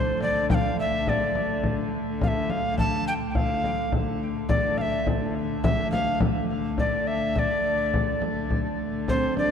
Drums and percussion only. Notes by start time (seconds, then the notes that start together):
0.21 frame drum
0.50 frame drum
0.78 frame drum
1.07 frame drum
1.35 frame drum
1.63 frame drum
1.93 frame drum
2.21 frame drum
2.50 frame drum
2.78 frame drum
3.35 frame drum
3.64 frame drum
3.92 frame drum
4.21 frame drum
4.49 frame drum
4.78 frame drum
5.07 frame drum
5.36 frame drum
5.64 frame drum
5.93 frame drum
6.20 frame drum
6.49 frame drum
6.78 frame drum
7.36 frame drum
7.65 frame drum
7.94 frame drum
8.22 frame drum
8.50 frame drum
8.79 frame drum
9.08 frame drum
9.37 frame drum